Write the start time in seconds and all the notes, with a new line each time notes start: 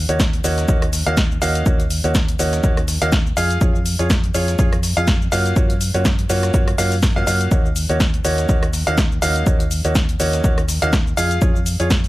0.09 D#2 A#3 C#4 D#4 F#4 C#5, closed hi-hat, shaker
0.20 kick, snare, shaker
0.33 closed hi-hat, shaker
0.44 D#2 A#3 C#4 D#4 F#4 C#5, open hi-hat, shaker
0.58 snare, closed hi-hat, shaker
0.68 D#2 A#3 C#4 D#4 F#4 C#5, kick, shaker
0.82 cross-stick, closed hi-hat, shaker
0.93 snare, open hi-hat, shaker
1.07 D#2 A#3 C#4 D#4 F#4 F5, closed hi-hat, shaker
1.17 kick, snare, shaker
1.32 shaker
1.42 D#2 A#3 C#4 D#4 F#4 F5, open hi-hat, shaker
1.55 closed hi-hat, shaker
1.66 A#3 C#4 D#4 F#4 C#5, kick, shaker
1.80 closed hi-hat, shaker
1.90 open hi-hat, shaker
2.04 D#2 A#3 C#4 D#4 F#4 C#5, closed hi-hat, shaker
2.15 kick, snare, shaker
2.28 closed hi-hat, shaker
2.39 D#2 A#3 C#4 D#4 F#4 C#5, open hi-hat, shaker
2.53 snare, closed hi-hat, shaker
2.64 D#2 A#3 C#4 D#4 F#4 C#5, kick, shaker
2.77 cross-stick, closed hi-hat, shaker
2.88 snare, open hi-hat, shaker
3.02 D#2 A#3 C#4 D#4 F#4 F5, closed hi-hat, shaker
3.12 kick, snare, shaker
3.27 shaker
3.37 F2 F4 G#4 F5, open hi-hat, shaker
3.50 closed hi-hat, shaker
3.61 F2 F4 G#4 C#5, kick, shaker
3.75 shaker
3.86 open hi-hat, shaker
3.99 F2 F4 G#4 C#5, closed hi-hat, shaker
4.10 kick, snare, shaker
4.24 closed hi-hat, shaker
4.34 F2 F4 G#4 C#5, open hi-hat, shaker
4.48 snare, closed hi-hat, shaker
4.59 F2 F4 G#4 C#5, kick, shaker
4.73 cross-stick, closed hi-hat, shaker
4.83 snare, open hi-hat, shaker
4.97 F2 F4 G#4 F5, closed hi-hat, shaker
5.08 kick, snare, shaker
5.22 shaker
5.32 F#2 A#3 C#4 F4 F#4 F5, open hi-hat, shaker
5.46 closed hi-hat, shaker
5.56 A#3 C#4 F4 F#4 C#5, kick, shaker
5.70 closed hi-hat, shaker
5.81 open hi-hat, shaker
5.94 F#2 A#3 C#4 F4 F#4 C#5, closed hi-hat, shaker
6.05 kick, snare, shaker
6.19 closed hi-hat, shaker
6.29 F#2 A#3 C#4 F4 F#4 C#5, open hi-hat, shaker
6.43 cross-stick, snare, closed hi-hat, shaker
6.54 A#3 C#4 F4 F#4 C#5, kick, shaker
6.68 cross-stick, closed hi-hat, shaker
6.78 F#2 A#3 C#4 F4 F#4 F5, snare, open hi-hat, shaker
6.92 closed hi-hat, open hi-hat, shaker
7.03 kick, snare, shaker
7.16 F#2 A#3 C#4 F4 F#4 F5, shaker
7.27 F#2 A#3 C#4 F4 F#4 F5, open hi-hat, shaker
7.41 closed hi-hat, shaker
7.51 D#2 A#3 C#4 D#4 F#4 C#5, kick, shaker
7.66 shaker
7.76 open hi-hat, shaker
7.89 D#2 A#3 C#4 D#4 F#4 C#5, closed hi-hat, shaker
8.00 kick, snare, shaker
8.14 closed hi-hat, shaker
8.25 D#2 A#3 C#4 D#4 F#4 C#5, open hi-hat, shaker
8.38 snare, closed hi-hat, shaker
8.49 D#2 A#3 C#4 D#4 F#4 C#5, kick, shaker
8.63 cross-stick, closed hi-hat, shaker
8.73 snare, open hi-hat, shaker
8.87 D#2 A#3 C#4 D#4 F#4 F5, closed hi-hat, shaker
8.98 kick, snare, shaker
9.12 shaker
9.22 D#2 A#3 C#4 D#4 F#4 F5, open hi-hat, shaker
9.36 closed hi-hat, shaker
9.46 D#2 A#3 C#4 D#4 F#4 C#5, kick, shaker
9.60 closed hi-hat, shaker
9.71 open hi-hat, shaker
9.85 D#2 A#3 C#4 D#4 F#4 C#5, closed hi-hat, shaker
9.95 kick, snare, shaker
10.09 closed hi-hat, shaker
10.20 D#2 A#3 C#4 D#4 F#4 C#5, open hi-hat, shaker
10.33 snare, closed hi-hat, shaker
10.44 A#3 C#4 D#4 F#4 C#5, kick, shaker
10.58 cross-stick, closed hi-hat, shaker
10.69 snare, open hi-hat, shaker
10.82 D#2 A#3 C#4 D#4 F#4 F5, closed hi-hat, shaker
10.93 kick, snare, shaker
11.07 shaker
11.17 F2 F4 G#4 F5, open hi-hat, shaker
11.31 closed hi-hat, shaker
11.42 F2 F4 G#4 C#5, kick, shaker
11.56 shaker
11.66 open hi-hat, shaker
11.80 F2 F4 G#4 C#5, closed hi-hat, shaker
11.90 kick, snare, shaker
12.04 closed hi-hat, shaker